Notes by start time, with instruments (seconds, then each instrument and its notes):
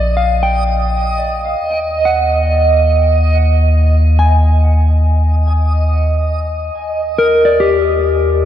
Already playing: sub bass A#1, clean electric guitar D5, synth texture D#5
0.17 clean electric guitar F5
0.43 clean electric guitar G5
1.61 sub bass D#2
2.05 clean electric guitar F#5
4.19 clean electric guitar G#5
6.75 sub bass D#2
7.18 clean electric guitar A#4
7.45 clean electric guitar D5
7.60 clean electric guitar G4